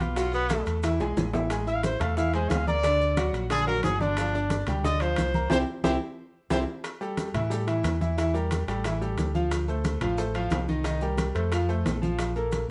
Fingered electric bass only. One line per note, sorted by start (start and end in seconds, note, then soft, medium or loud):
0.00 0.61 B1 medium
0.67 0.98 E2 medium
0.99 1.15 B1 medium
1.17 1.95 A1 medium
2.00 2.47 E2 loud
2.51 3.29 D2 medium
3.33 3.80 A#1 loud
3.83 4.61 G1 medium
4.67 5.14 D2 loud
5.17 5.48 C2 medium
5.50 5.63 C2 medium
5.83 5.96 C2 loud
6.51 6.63 C2 loud
7.34 7.81 A2 medium
7.84 8.62 E2 medium
8.67 9.14 A1 loud
9.17 9.96 D2 medium
10.01 10.48 A1 loud
10.51 11.30 C2 medium
11.35 11.82 F2 medium
11.85 12.63 A#1 medium